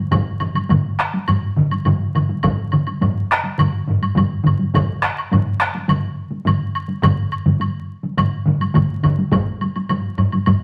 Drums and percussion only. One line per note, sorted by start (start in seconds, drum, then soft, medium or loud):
0.11 taiko loud
0.11 taiko low-mid loud
0.11 taiko mid medium
0.11 taiko high medium
0.11 high woodblock medium
0.40 taiko low-mid medium
0.40 taiko mid medium
0.40 high woodblock soft
0.55 taiko high medium
0.55 high woodblock medium
0.69 taiko low-mid loud
0.69 taiko mid loud
0.69 taiko high medium
0.69 high woodblock soft
0.99 taiko rim medium
1.14 taiko high medium
1.28 taiko low-mid loud
1.28 taiko mid medium
1.28 taiko high medium
1.28 high woodblock medium
1.57 taiko low-mid medium
1.57 taiko mid medium
1.71 taiko high medium
1.71 high woodblock soft
1.85 taiko low-mid medium
1.85 taiko mid loud
1.85 taiko high medium
1.85 high woodblock soft
2.15 taiko low-mid loud
2.15 taiko mid loud
2.15 high woodblock soft
2.29 taiko high medium
2.43 taiko loud
2.43 taiko low-mid loud
2.43 taiko mid medium
2.43 taiko high medium
2.43 high woodblock medium
2.72 taiko low-mid medium
2.72 taiko mid medium
2.72 high woodblock soft
2.87 taiko high medium
2.87 high woodblock soft
3.01 taiko low-mid loud
3.01 taiko mid loud
3.01 taiko high medium
3.01 high woodblock soft
3.31 taiko rim medium
3.44 taiko high medium
3.58 taiko low-mid loud
3.58 taiko mid loud
3.58 taiko high medium
3.58 high woodblock medium
3.87 taiko low-mid medium
3.87 taiko mid medium
4.02 taiko high soft
4.02 high woodblock soft
4.15 taiko medium
4.15 taiko low-mid medium
4.15 taiko mid loud
4.15 taiko high medium
4.15 high woodblock soft
4.44 taiko low-mid medium
4.44 taiko mid loud
4.44 high woodblock soft
4.59 taiko high medium
4.74 taiko loud
4.74 taiko low-mid loud
4.74 taiko mid loud
4.74 taiko high medium
4.74 high woodblock medium
5.02 taiko rim medium
5.02 high woodblock medium
5.04 taiko rim medium
5.18 high woodblock medium
5.31 taiko low-mid loud
5.31 taiko mid loud
5.31 taiko high medium
5.31 high woodblock soft
5.60 taiko rim medium
5.62 taiko rim medium
5.75 taiko high medium
5.88 taiko low-mid loud
5.88 taiko mid medium
5.88 taiko high medium
5.88 high woodblock medium
6.31 taiko high soft
6.45 taiko low-mid medium
6.45 taiko mid loud
6.45 taiko high medium
6.45 high woodblock medium
6.75 high woodblock medium
6.88 taiko high medium
7.03 taiko loud
7.03 taiko low-mid loud
7.03 taiko mid loud
7.03 taiko high medium
7.03 high woodblock medium
7.32 high woodblock medium
7.46 taiko low-mid loud
7.46 taiko mid loud
7.46 taiko high medium
7.60 taiko high medium
7.60 high woodblock soft
8.03 taiko high medium
8.17 taiko low-mid loud
8.17 taiko mid loud
8.17 taiko high medium
8.17 high woodblock medium
8.45 taiko low-mid medium
8.45 taiko mid loud
8.45 taiko high soft
8.61 taiko high soft
8.61 high woodblock soft
8.74 taiko medium
8.74 taiko low-mid medium
8.74 taiko mid loud
8.74 taiko high medium
8.74 high woodblock medium
9.03 taiko medium
9.03 taiko low-mid loud
9.03 taiko mid loud
9.03 high woodblock soft
9.18 taiko high medium
9.32 taiko loud
9.32 taiko low-mid loud
9.32 taiko high medium
9.32 high woodblock soft
9.61 taiko high medium
9.61 high woodblock soft
9.76 taiko high medium
9.76 high woodblock soft
9.89 taiko low-mid medium
9.89 taiko high medium
9.89 high woodblock soft
10.18 taiko low-mid loud
10.18 taiko high medium
10.18 high woodblock soft
10.32 taiko high medium
10.32 high woodblock soft
10.46 taiko low-mid loud
10.46 taiko high medium
10.46 high woodblock soft